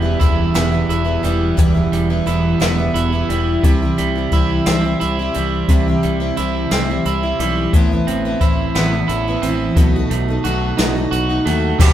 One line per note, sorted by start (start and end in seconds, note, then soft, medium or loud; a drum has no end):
0.00 0.14 E1 medium
0.00 1.24 E2 medium
0.00 1.23 G3 medium
0.00 0.54 B3 medium
0.00 0.21 B3 medium
0.00 0.19 E4 medium
0.00 0.20 E4 medium
0.04 0.19 E3 soft
0.04 0.20 G3 soft
0.20 0.48 E1 medium
0.20 0.54 E3 medium
0.20 0.54 G3 medium
0.20 0.55 B3 medium
0.20 0.55 E4 medium
0.20 kick medium
0.20 closed hi-hat medium
0.54 0.82 E1 medium
0.54 0.72 E2 medium
0.54 0.72 B2 medium
0.54 0.73 E3 medium
0.54 0.73 G3 medium
0.54 0.72 B3 medium
0.54 0.71 E4 medium
0.54 snare loud
0.54 closed hi-hat medium
0.72 1.06 E3 soft
0.72 1.05 G3 soft
0.72 1.04 B3 soft
0.72 1.03 E4 medium
0.89 1.16 E1 medium
0.89 2.26 E4 medium
0.89 closed hi-hat medium
1.05 1.22 E3 soft
1.05 1.23 G3 soft
1.05 1.23 B3 soft
1.05 1.23 E4 medium
1.23 1.51 E1 medium
1.23 1.57 E3 medium
1.23 1.57 G3 medium
1.23 1.58 B3 medium
1.23 1.58 E4 medium
1.23 closed hi-hat medium
1.57 1.85 E1 medium
1.57 1.75 E2 medium
1.57 1.75 B2 medium
1.57 1.75 E3 medium
1.57 1.76 G3 medium
1.57 1.75 B3 medium
1.57 1.73 E4 medium
1.57 kick loud
1.57 closed hi-hat medium
1.75 2.11 E3 soft
1.75 2.10 G3 soft
1.75 2.09 B3 soft
1.75 2.09 E4 medium
1.92 2.19 E1 medium
1.92 3.29 G3 medium
1.92 closed hi-hat medium
2.10 2.25 E3 soft
2.10 2.26 G3 soft
2.10 2.27 B3 medium
2.10 2.27 E4 medium
2.26 2.53 E1 medium
2.26 2.59 E3 medium
2.26 2.60 G3 medium
2.26 2.61 B3 medium
2.26 2.61 E4 medium
2.26 closed hi-hat medium
2.60 2.88 E1 medium
2.60 2.78 E2 medium
2.60 2.78 B2 medium
2.60 2.78 E3 medium
2.60 2.78 G3 medium
2.60 2.78 B3 medium
2.60 2.77 E4 medium
2.60 snare loud
2.60 closed hi-hat medium
2.78 3.13 E3 soft
2.78 3.13 G3 soft
2.78 3.12 B3 soft
2.78 3.11 E4 medium
2.94 3.22 E1 medium
2.94 4.32 E4 medium
2.94 closed hi-hat medium
3.13 3.29 E3 soft
3.13 3.30 G3 soft
3.13 3.30 B3 soft
3.13 3.30 E4 medium
3.30 3.56 E1 medium
3.30 3.63 E3 medium
3.30 3.64 G3 medium
3.30 3.65 B3 medium
3.30 3.65 E4 medium
3.30 closed hi-hat medium
3.64 3.90 C2 medium
3.64 3.81 C3 medium
3.64 3.81 E3 medium
3.64 3.82 G3 medium
3.64 3.82 C4 medium
3.64 3.81 E4 medium
3.64 kick loud
3.64 closed hi-hat medium
3.82 4.17 G3 medium
3.82 4.17 C4 soft
3.82 4.14 E4 medium
3.98 4.25 C2 medium
3.98 5.34 G3 medium
3.98 closed hi-hat medium
4.16 4.33 G3 soft
4.16 4.34 C4 soft
4.16 4.33 E4 soft
4.32 4.59 C2 medium
4.32 4.66 E3 medium
4.32 4.67 G3 medium
4.32 4.67 C4 medium
4.32 kick medium
4.32 closed hi-hat medium
4.36 4.67 E4 medium
4.66 4.93 C2 medium
4.66 4.84 C3 medium
4.66 4.84 E3 medium
4.66 4.84 G3 medium
4.66 4.85 C4 medium
4.66 4.83 E4 medium
4.66 snare loud
4.66 closed hi-hat medium
4.84 5.20 G3 soft
4.84 5.19 C4 medium
4.84 5.18 E4 soft
5.00 5.28 C2 medium
5.00 6.37 E4 medium
5.00 closed hi-hat soft
5.19 5.35 G3 soft
5.19 5.36 C4 soft
5.19 5.35 E4 medium
5.34 5.62 C2 medium
5.34 5.69 E3 medium
5.34 5.70 G3 medium
5.34 5.70 C4 medium
5.34 closed hi-hat medium
5.38 5.71 E4 medium
5.69 5.95 C2 medium
5.69 5.87 C3 medium
5.69 5.87 E3 medium
5.69 5.87 G3 medium
5.69 5.88 C4 medium
5.69 5.87 E4 medium
5.69 kick medium
5.69 closed hi-hat medium
5.88 6.22 G3 soft
5.88 6.20 C4 medium
5.88 6.19 E4 medium
6.03 6.30 C2 medium
6.03 7.38 G3 medium
6.03 closed hi-hat medium
6.20 6.38 G3 soft
6.20 6.38 C4 medium
6.20 6.37 E4 medium
6.37 6.64 C2 medium
6.37 6.71 E3 medium
6.37 6.72 G3 medium
6.37 6.73 C4 medium
6.37 6.73 E4 medium
6.37 closed hi-hat medium
6.71 6.98 C2 medium
6.71 6.88 C3 medium
6.71 6.89 E3 medium
6.71 6.89 G3 medium
6.71 6.90 C4 medium
6.71 6.88 E4 medium
6.71 snare loud
6.71 closed hi-hat medium
6.90 7.25 G3 soft
6.90 7.23 C4 medium
6.90 7.22 E4 medium
7.05 7.32 C2 medium
7.05 7.74 E4 medium
7.05 closed hi-hat medium
7.23 7.40 G3 soft
7.23 7.40 C4 soft
7.23 7.40 E4 medium
7.40 7.66 B1 medium
7.40 7.74 E3 medium
7.40 7.74 G3 medium
7.40 7.75 C4 medium
7.40 7.75 E4 medium
7.40 closed hi-hat medium
7.73 8.00 A1 medium
7.73 7.91 A2 medium
7.73 7.91 E3 medium
7.73 7.92 B3 medium
7.73 7.92 C4 medium
7.73 7.91 E4 medium
7.73 kick loud
7.73 closed hi-hat medium
7.92 8.25 B3 medium
7.92 8.27 C4 soft
7.92 8.24 E4 medium
8.07 8.34 A1 medium
8.07 9.41 C4 medium
8.07 closed hi-hat medium
8.25 8.42 B3 medium
8.25 8.42 C4 soft
8.25 8.42 E4 medium
8.41 8.67 A1 medium
8.41 8.76 E3 medium
8.41 8.76 C4 medium
8.41 8.77 E4 medium
8.41 kick medium
8.41 closed hi-hat medium
8.75 9.02 A1 medium
8.75 8.93 A2 medium
8.75 8.93 E3 medium
8.75 8.94 B3 loud
8.75 8.93 C4 medium
8.75 8.93 E4 loud
8.75 snare loud
8.75 closed hi-hat medium
8.94 9.27 E4 soft
9.08 9.36 A1 medium
9.08 9.76 E4 medium
9.08 closed hi-hat medium
9.28 9.45 B3 medium
9.28 9.45 C4 soft
9.28 9.44 E4 medium
9.42 9.69 A1 medium
9.42 9.76 C4 medium
9.42 closed hi-hat medium
9.46 9.78 E3 medium
9.46 9.80 E4 medium
9.76 10.03 B1 medium
9.76 9.94 B2 medium
9.76 9.95 F#3 medium
9.76 9.95 A3 medium
9.76 9.95 D#4 medium
9.76 kick loud
9.76 closed hi-hat medium
9.81 9.95 F#4 medium
9.96 10.30 A3 soft
9.96 10.29 D#4 medium
9.96 10.27 F#4 medium
10.10 10.37 B1 medium
10.10 11.44 A3 medium
10.10 closed hi-hat medium
10.28 10.46 A3 soft
10.28 10.46 D#4 medium
10.28 10.45 F#4 medium
10.44 10.71 B1 medium
10.44 10.78 F#3 medium
10.44 10.79 A3 medium
10.44 11.10 F#4 medium
10.44 closed hi-hat medium
10.49 10.79 D#4 medium
10.49 10.80 F#4 medium
10.78 11.05 B1 medium
10.78 10.95 B2 medium
10.78 10.96 F#3 medium
10.78 10.96 A3 medium
10.78 10.96 D#4 loud
10.78 10.95 F#4 loud
10.78 snare loud
10.78 closed hi-hat medium
10.96 11.31 A3 soft
10.96 11.29 D#4 soft
10.96 11.28 F#4 medium
11.11 11.38 B1 medium
11.11 11.79 F#4 medium
11.11 closed hi-hat medium
11.29 11.47 A3 soft
11.29 11.47 D#4 medium
11.29 11.46 F#4 soft
11.46 11.72 D#2 medium
11.46 11.80 F#3 medium
11.46 11.81 A3 medium
11.46 11.81 D#4 medium
11.46 11.82 F#4 medium
11.46 closed hi-hat medium
11.80 11.93 E1 medium
11.80 11.93 E2 loud
11.80 11.93 B2 loud
11.80 11.93 E3 loud
11.80 11.93 G3 loud
11.80 11.93 B3 loud
11.80 11.93 E4 medium
11.80 11.93 G4 medium
11.80 kick loud
11.80 crash loud